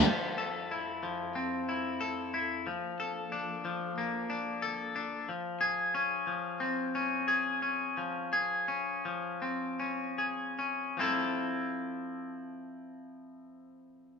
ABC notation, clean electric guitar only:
X:1
M:4/4
L:1/8
Q:1/4=90
K:F
V:1 name="Clean electric guitar"
F, A E F, C E A E | F, A D F, B, D A D | F, _A _D F, C D A D | F, _A _D F, C D A D |
[F,CEA]8 |]